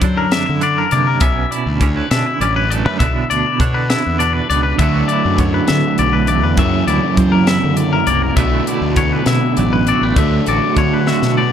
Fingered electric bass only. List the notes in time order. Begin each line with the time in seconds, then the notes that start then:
0.01 F#3
0.49 D3
0.92 C3
1.22 B1
1.66 D2
2.11 B2
2.40 A1
2.86 F#2
3.00 B1
3.31 D2
3.60 B2
4.06 E2
4.50 C#2
4.79 D2
5.25 F#2
5.70 D3
5.99 B1
6.44 E2
6.58 F#2
6.87 D2
7.18 F#3
7.64 D3
8.07 C2
8.37 B1
8.81 D2
9.26 B2
9.58 A1
10.02 A1
10.16 D2
10.48 A1
10.76 D3
11.22 B2